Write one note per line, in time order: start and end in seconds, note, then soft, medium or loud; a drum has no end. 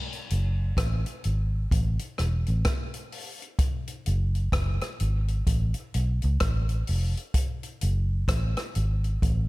0.13 closed hi-hat soft
0.30 0.72 F#1 medium
0.30 closed hi-hat medium
0.77 1.03 A1 medium
0.77 kick loud
0.77 cross-stick loud
0.77 closed hi-hat loud
1.06 closed hi-hat soft
1.24 1.66 G#1 medium
1.24 closed hi-hat medium
1.71 1.97 A1 medium
1.71 kick loud
1.71 closed hi-hat medium
1.99 closed hi-hat medium
2.18 2.44 E1 medium
2.18 cross-stick medium
2.18 closed hi-hat medium
2.46 2.63 A1 medium
2.46 closed hi-hat soft
2.65 kick loud
2.65 cross-stick loud
2.65 closed hi-hat medium
2.94 closed hi-hat medium
3.12 open hi-hat medium
3.42 closed hi-hat soft
3.59 kick loud
3.59 closed hi-hat loud
3.87 closed hi-hat medium
4.06 4.48 F#1 loud
4.06 closed hi-hat medium
4.35 closed hi-hat soft
4.52 4.78 F#1 loud
4.52 kick loud
4.52 cross-stick loud
4.52 closed hi-hat medium
4.81 cross-stick medium
4.81 closed hi-hat medium
5.00 5.41 G#1 medium
5.00 closed hi-hat medium
5.28 closed hi-hat soft
5.47 5.72 A1 loud
5.47 kick loud
5.47 closed hi-hat loud
5.74 closed hi-hat soft
5.94 6.19 B1 medium
5.94 closed hi-hat medium
6.22 6.39 C#2 medium
6.22 closed hi-hat soft
6.40 6.82 A1 loud
6.40 kick loud
6.40 cross-stick loud
6.40 closed hi-hat medium
6.69 closed hi-hat soft
6.87 7.13 F1 medium
6.87 open hi-hat medium
7.17 closed hi-hat soft
7.34 kick loud
7.34 closed hi-hat loud
7.63 closed hi-hat soft
7.81 8.23 F#1 loud
7.81 closed hi-hat medium
8.28 8.54 A1 medium
8.28 kick loud
8.28 cross-stick loud
8.28 closed hi-hat loud
8.57 cross-stick medium
8.57 closed hi-hat medium
8.75 9.16 G#1 medium
8.75 closed hi-hat medium
9.04 closed hi-hat soft
9.22 9.48 A1 loud
9.22 kick loud
9.22 closed hi-hat medium